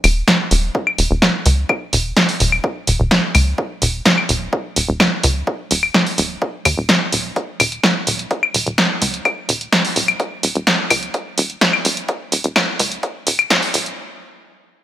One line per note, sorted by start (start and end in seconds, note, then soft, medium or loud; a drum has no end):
0.04 0.23 D#1 loud
0.04 open hi-hat loud
0.04 claves soft
0.28 kick loud
0.28 snare medium
0.51 0.70 D#1 loud
0.51 open hi-hat medium
0.75 kick loud
0.87 claves medium
0.98 1.08 D#1 medium
0.98 open hi-hat medium
1.11 1.29 D#1 medium
1.22 kick loud
1.22 snare loud
1.46 1.64 C#2 medium
1.46 open hi-hat loud
1.69 kick loud
1.69 claves soft
1.93 2.12 D#1 loud
1.93 open hi-hat loud
2.17 kick loud
2.17 snare loud
2.29 open hi-hat medium
2.40 2.59 D#1 loud
2.40 open hi-hat loud
2.52 claves soft
2.64 kick loud
2.87 2.97 D#1 medium
2.87 open hi-hat loud
3.00 3.18 D#1 medium
3.11 kick loud
3.11 snare loud
3.35 3.53 C#2 medium
3.35 open hi-hat loud
3.35 claves soft
3.58 kick loud
3.82 4.01 D#1 loud
3.82 open hi-hat loud
4.05 kick loud
4.05 snare loud
4.18 claves soft
4.29 4.48 D#1 medium
4.29 open hi-hat loud
4.53 kick loud
4.76 4.86 D#1 medium
4.76 open hi-hat loud
4.88 5.07 D#1 medium
5.00 kick loud
5.00 snare loud
5.00 claves soft
5.23 5.42 C#2 medium
5.23 open hi-hat loud
5.47 kick loud
5.71 5.90 D#1 loud
5.71 open hi-hat loud
5.83 claves soft
5.94 kick loud
5.94 snare medium
6.07 open hi-hat medium
6.18 6.37 D#1 loud
6.18 open hi-hat loud
6.42 kick loud
6.65 6.75 D#2 medium
6.65 open hi-hat loud
6.65 claves soft
6.77 6.96 D#1 medium
6.89 kick loud
6.89 snare loud
7.12 7.31 D#1 medium
7.12 open hi-hat loud
7.36 kick loud
7.36 closed hi-hat soft
7.60 7.78 D#1 loud
7.60 open hi-hat loud
7.60 claves soft
7.72 closed hi-hat soft
7.83 kick loud
7.83 snare loud
7.83 closed hi-hat soft
8.07 8.26 D#1 medium
8.07 open hi-hat loud
8.19 closed hi-hat soft
8.31 kick loud
8.31 closed hi-hat soft
8.43 claves medium
8.54 8.64 D#1 medium
8.54 open hi-hat loud
8.66 8.85 D#1 medium
8.66 closed hi-hat soft
8.78 kick loud
8.78 snare medium
8.78 closed hi-hat soft
9.02 9.20 C#2 medium
9.02 open hi-hat loud
9.14 closed hi-hat soft
9.25 kick loud
9.25 closed hi-hat soft
9.25 claves medium
9.49 9.67 D#1 loud
9.49 open hi-hat loud
9.61 closed hi-hat soft
9.72 kick loud
9.72 snare medium
9.72 closed hi-hat soft
9.85 open hi-hat medium
9.96 10.15 D#1 loud
9.96 open hi-hat medium
10.08 closed hi-hat soft
10.08 claves medium
10.20 kick loud
10.20 closed hi-hat soft
10.43 10.53 D#1 medium
10.43 open hi-hat loud
10.55 10.74 D#1 medium
10.55 closed hi-hat soft
10.67 kick loud
10.67 snare medium
10.67 closed hi-hat soft
10.90 11.09 C#2 loud
10.90 open hi-hat loud
10.90 claves medium
11.03 closed hi-hat soft
11.14 kick loud
11.14 closed hi-hat soft
11.38 11.56 D#1 loud
11.38 open hi-hat loud
11.50 closed hi-hat soft
11.61 kick loud
11.61 snare loud
11.61 closed hi-hat soft
11.73 claves medium
11.85 12.04 D#1 loud
11.85 open hi-hat loud
11.97 closed hi-hat soft
12.08 kick loud
12.08 closed hi-hat soft
12.32 12.42 D#1 medium
12.32 open hi-hat loud
12.44 12.63 D#1 medium
12.44 closed hi-hat soft
12.56 kick loud
12.56 snare loud
12.56 closed hi-hat soft
12.56 claves medium
12.79 12.98 C#2 medium
12.79 open hi-hat loud
12.92 closed hi-hat soft
13.03 kick loud
13.03 closed hi-hat soft
13.27 13.45 D#1 loud
13.27 open hi-hat loud
13.39 closed hi-hat soft
13.39 claves medium
13.50 kick loud
13.50 snare loud
13.50 closed hi-hat soft
13.63 open hi-hat medium
13.74 13.93 D#1 loud
13.74 open hi-hat loud
13.86 closed hi-hat soft